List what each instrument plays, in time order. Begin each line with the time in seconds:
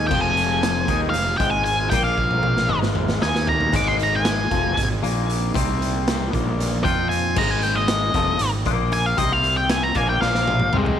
Already playing: string machine G#3 C4 F4 G#4
0.07 fingered electric bass F1, clean electric guitar F2 F3, lead electric guitar G5, kick, crash, high conga, low conga
0.21 lead electric guitar G#5
0.37 closed hi-hat
0.63 snare, closed hi-hat
0.76 low conga
0.88 fingered electric bass D#2, clean electric guitar D#3 D#4, kick, closed hi-hat
1.00 high conga
1.10 lead electric guitar F5, closed hi-hat
1.14 fingered electric bass F1, snare
1.27 low conga
1.38 fingered electric bass G#1, clean electric guitar G#2 G#3, lead electric guitar G5, kick, closed hi-hat
1.50 lead electric guitar G#5
1.64 lead electric guitar G#5, closed hi-hat
1.90 fingered electric bass A#1, clean electric guitar A#2 A#3, lead electric guitar G5, kick, closed hi-hat, high conga, low conga
2.04 lead electric guitar F5
2.18 kick
2.31 high tom
2.43 high tom
2.57 snare, low conga
2.69 fingered electric bass G#1, clean electric guitar G#2 G#3, mid tom
2.82 snare, high conga
2.95 mid tom
3.08 snare, low conga
3.21 fingered electric bass D#2, clean electric guitar D#3 D#4, lead electric guitar G#5, snare
3.35 snare
3.47 lead electric guitar A#5, floor tom
3.60 floor tom
3.72 fingered electric bass G#1, clean electric guitar G#2 G#3, string machine A#3 C4 D#4, lead electric guitar D6, kick, closed hi-hat, crash, high conga, low conga
3.88 lead electric guitar C6
3.99 lead electric guitar A#5, closed hi-hat
4.15 lead electric guitar G#5
4.25 snare, closed hi-hat
4.39 low conga
4.51 fingered electric bass F1, clean electric guitar F2 F3, kick, closed hi-hat
4.64 high conga
4.77 fingered electric bass G#1, kick, closed hi-hat
4.90 low conga
5.03 fingered electric bass A#1, clean electric guitar A#2 A#3, closed hi-hat
5.30 closed hi-hat
5.54 fingered electric bass C2, clean electric guitar C3 C4, kick, closed hi-hat, high conga, low conga
5.67 low conga
5.82 closed hi-hat
6.08 snare, closed hi-hat
6.20 low conga
6.32 fingered electric bass A#1, clean electric guitar A#2 A#3, kick, closed hi-hat
6.46 high conga
6.60 snare, closed hi-hat
6.72 low conga
6.84 fingered electric bass F2, clean electric guitar F3 F4, lead electric guitar G5, kick, closed hi-hat
7.09 lead electric guitar G#5, closed hi-hat
7.36 fingered electric bass G#1, clean electric guitar G#2 G#3, lead electric guitar A#5, kick, crash, high conga, low conga
7.49 lead electric guitar G#5, low conga
7.62 lead electric guitar G5, closed hi-hat
7.75 lead electric guitar D#5
7.88 snare, closed hi-hat
8.14 fingered electric bass F1, clean electric guitar F2 F3, kick, snare, closed hi-hat
8.28 high conga
8.39 fingered electric bass G#1, clean electric guitar G#2, closed hi-hat
8.54 low conga
8.65 fingered electric bass A#1, clean electric guitar A#2 A#3, kick, closed hi-hat
8.92 lead electric guitar G#5, closed hi-hat
9.06 lead electric guitar F5
9.17 fingered electric bass C2, clean electric guitar C3 C4, lead electric guitar D#5, kick, closed hi-hat, high conga, low conga
9.32 lead electric guitar F5
9.44 closed hi-hat
9.57 lead electric guitar G5
9.69 lead electric guitar G#5, snare, closed hi-hat
9.82 lead electric guitar A#5, low conga
9.95 fingered electric bass A#1, clean electric guitar A#2 A#3, lead electric guitar G#5, kick, closed hi-hat
10.08 lead electric guitar G5, high conga, low conga
10.21 fingered electric bass A#1, clean electric guitar A#2 A#3, lead electric guitar F5, snare
10.33 snare, low conga
10.46 high tom, high conga
10.59 mid tom, high conga
10.71 fingered electric bass C2, clean electric guitar C3 C4, mid tom, low conga
10.77 lead electric guitar G#3
10.85 floor tom, low conga